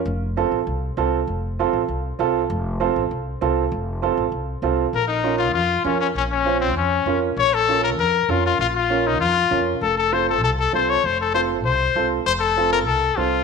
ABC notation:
X:1
M:4/4
L:1/8
Q:1/4=197
K:Bbm
V:1 name="Trumpet"
z8 | z8 | z8 | z8 |
B E2 F F2 D D | D D2 C D3 z | d =A2 B B2 F F | F F2 E F3 z |
=A A c A A A c d | c =A c z c3 z | c =A2 B A2 F2 |]
V:2 name="Upright piano"
z2 [CF=A] z3 [CFA] z | z2 [CF=A] z3 [CFA] z | z2 [CF=A] z3 [CFA] z | z2 [CF=A] z3 [CFA] z |
z2 [DFB] z3 [DFB] z | z2 [DFc] z3 [DFB] z | z2 [DFB] z3 [DFB] z | z2 [DFB] z3 [DFB] z |
z2 [CF=A] z3 [CFA] z | z2 [CF=A] z3 [CFA] z | z2 [CF=A] z3 [CFA] z |]
V:3 name="Upright bass" clef=bass
F,,,3 =A,,, C,,2 C,,2 | F,,,3 =A,,, C,,2 C,,2 | F,,,3 =A,,, C,,2 C,,2 | F,,,3 =A,,, C,,2 C,,2 |
B,,,4 F,,2 F,,2 | B,,,4 F,,2 F,,2 | B,,,4 F,,2 F,,2 | B,,,4 F,,2 F,,2 |
F,,,4 C,,2 C,,2 | F,,,4 C,,2 C,,2 | F,,,4 C,,2 C,,2 |]